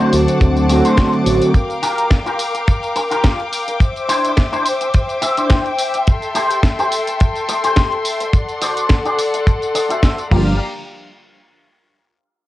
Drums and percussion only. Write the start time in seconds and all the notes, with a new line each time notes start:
0.00 closed hi-hat, tambourine
0.13 open hi-hat, tambourine
0.28 closed hi-hat, tambourine
0.41 kick, closed hi-hat, tambourine
0.57 closed hi-hat, tambourine
0.69 open hi-hat, tambourine
0.85 closed hi-hat, tambourine
0.97 kick, snare, closed hi-hat, tambourine
1.13 closed hi-hat
1.26 open hi-hat, tambourine
1.41 closed hi-hat, tambourine
1.54 kick, closed hi-hat, tambourine
1.70 closed hi-hat, tambourine
1.83 open hi-hat, tambourine
1.98 closed hi-hat, tambourine
2.11 kick, snare, closed hi-hat, tambourine
2.26 closed hi-hat, tambourine
2.39 open hi-hat, tambourine
2.55 closed hi-hat, tambourine
2.68 kick, closed hi-hat, tambourine
2.83 closed hi-hat, tambourine
2.96 open hi-hat, tambourine
3.11 closed hi-hat, tambourine
3.24 kick, snare, closed hi-hat, tambourine
3.40 closed hi-hat
3.53 open hi-hat, tambourine
3.68 closed hi-hat, tambourine
3.80 kick, closed hi-hat, tambourine
3.96 closed hi-hat, tambourine
4.09 open hi-hat, tambourine
4.25 closed hi-hat, tambourine
4.37 kick, snare, closed hi-hat, tambourine
4.53 closed hi-hat, tambourine
4.66 open hi-hat, tambourine
4.81 closed hi-hat, tambourine
4.94 kick, closed hi-hat, tambourine
5.09 closed hi-hat, tambourine
5.22 open hi-hat, tambourine
5.37 closed hi-hat, tambourine
5.50 kick, snare, closed hi-hat, tambourine
5.66 closed hi-hat
5.79 open hi-hat, tambourine
5.94 closed hi-hat, tambourine
6.07 kick, closed hi-hat, tambourine
6.22 closed hi-hat, tambourine
6.35 open hi-hat, tambourine
6.51 closed hi-hat, tambourine
6.63 kick, snare, closed hi-hat, tambourine
6.79 closed hi-hat, tambourine
6.92 open hi-hat, tambourine
7.07 closed hi-hat, tambourine
7.20 kick, closed hi-hat, tambourine
7.35 closed hi-hat, tambourine
7.49 open hi-hat, tambourine
7.64 closed hi-hat, tambourine
7.76 kick, snare, closed hi-hat, tambourine
7.92 closed hi-hat
8.05 open hi-hat, tambourine
8.20 closed hi-hat, tambourine
8.33 kick, closed hi-hat, tambourine
8.49 closed hi-hat, tambourine
8.62 open hi-hat, tambourine
8.77 closed hi-hat, tambourine
8.89 kick, snare, closed hi-hat, tambourine
9.06 closed hi-hat, tambourine
9.19 open hi-hat, tambourine
9.34 closed hi-hat, tambourine
9.47 kick, closed hi-hat, tambourine
9.62 closed hi-hat, tambourine
9.75 open hi-hat, tambourine
9.90 closed hi-hat, tambourine
10.03 kick, snare, closed hi-hat, tambourine
10.19 closed hi-hat, tambourine
10.32 kick, crash